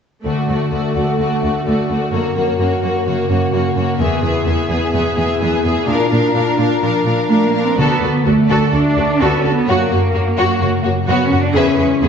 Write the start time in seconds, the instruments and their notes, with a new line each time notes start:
0.24 cello section D2, harp D3, viola section A3, french horn section A3 F#4, violin section F#4 D5
0.41 harp D4
0.47 cello section D2, viola section A3, violin section F#4 D5
0.56 harp F#4
0.72 cello section D2, viola section A3, violin section F#4 D5, harp A4
0.88 harp D5
0.95 cello section D2, viola section A3, violin section F#4 D5
1.04 harp A4
1.19 cello section D2, harp A3, viola section A3, violin section F#4 D5
1.35 harp D4
1.43 cello section D2, viola section A3, violin section F#4 D5
1.50 harp F#4
1.65 cello section D2, viola section A3, violin section F#4 D5, harp A4
1.81 harp D5
1.88 cello section D2, viola section A3, violin section F#4 D5
1.97 harp A4
2.11 harp F#2, cello section F#2, viola section A#3, french horn section A#3, violin section F#4 C#5
2.27 harp A#3
2.35 cello section F#2, viola section A#3, violin section F#4 C#5
2.43 harp C#4
2.58 cello section F#2, viola section A#3, violin section F#4 C#5, harp F#4
2.74 harp A#4
2.82 cello section F#2, viola section A#3, violin section F#4 C#5
2.90 harp F#4
3.05 cello section F#2, harp C#3, viola section A#3, violin section F#4 C#5
3.21 harp A#3
3.28 cello section F#2, viola section A#3, violin section F#4 C#5
3.37 harp C#4
3.52 cello section F#2, viola section A#3, harp F#4, violin section F#4 C#5
3.68 harp A#4
3.74 cello section F#2, viola section A#3, violin section F#4 C#5
3.84 harp F#4
3.97 harp E2, cello section E2, viola section B3, french horn section B3 G#4, violin section G#4 E5
4.15 harp B3
4.22 cello section E2, viola section B3, violin section G#4 E5
4.30 harp E4
4.45 cello section E2, viola section B3, harp G#4, violin section G#4 E5
4.62 harp B4
4.69 cello section E2, viola section B3, violin section G#4 E5
4.77 harp G#4
4.93 cello section E2, harp B2, viola section B3, violin section G#4 E5
5.09 harp B3
5.16 cello section E2, viola section B3, violin section G#4 E5
5.25 harp E4
5.40 cello section E2, viola section B3, harp G#4, violin section G#4 E5
5.55 harp B4
5.64 cello section E2, viola section B3, violin section G#4 E5
5.71 harp G#4
5.86 cello section A#2, harp A#2, viola section D4, french horn section D4 F4, violin section A#4 F5
6.03 harp D4
6.10 cello section A#2, viola section D4, violin section A#4 F5
6.18 harp F4
6.35 cello section A#2, viola section D4, harp A#4, violin section A#4 F5
6.51 harp D5
6.58 cello section A#2, viola section D4, violin section A#4 F5
6.67 harp A#4
6.81 cello section A#2, harp F3, viola section D4, violin section A#4 F5
6.98 harp D4
7.06 cello section A#2, viola section D4, violin section A#4 F5
7.13 harp F4
7.29 cello section A#2 A3, viola section D4, harp A#4, violin section A#4 F5
7.45 cello section A#3, harp D5
7.54 cello section A#2, viola section D4, violin section A#4 F5
7.62 cello section C4, harp A#4
7.77 double bass section D2, harp D3, timpani D3, cello section B3, viola section F#4, violin section A4 D5
8.02 double bass section D2, harp D4, viola section F#4, violin section A4 D5
8.26 double bass section D2, cello section A3, viola section F#4, harp A4, violin section A4 D5
8.49 double bass section D2, harp D4, viola section F#4, violin section A4 D5
8.73 double bass section D2, harp A3, cello section D4, viola section F#4, violin section A4 D5
8.96 double bass section D2, harp D4, viola section F#4, violin section A4 D5
9.20 double bass section D2, cello section B3, viola section F#4, harp A4, violin section A4 D5
9.38 cello section C#4
9.43 double bass section D2, harp D4, viola section F#4, violin section A4 D5
9.53 cello section B3
9.67 harp F#2, double bass section F#2, cello section A#3, violin section F#4 C#5, viola section F#4
9.90 double bass section F#2, harp A#3, violin section F#4 C#5, viola section F#4
10.13 double bass section F#2, harp F#4, violin section F#4 C#5, viola section F#4
10.37 double bass section F#2, harp A#3, violin section F#4 C#5, viola section F#4
10.60 double bass section F#2, harp C#3, violin section F#4 C#5, viola section F#4
10.83 double bass section F#2, harp A#3, violin section F#4 C#5, viola section F#4
11.07 double bass section F#2, cello section B3, harp F#4, viola section F#4, violin section F#4 C#5
11.25 cello section C#4
11.30 double bass section F#2, harp A#3, viola section F#4, violin section F#4 C#5
11.40 cello section D4
11.54 harp E2, double bass section E2, cello section C#4, viola section G#4, violin section B4 E5
11.77 double bass section E2, harp G#3, viola section G#4, violin section B4 E5
12.01 double bass section E2, cello section B3, harp G#4, viola section G#4, violin section B4 E5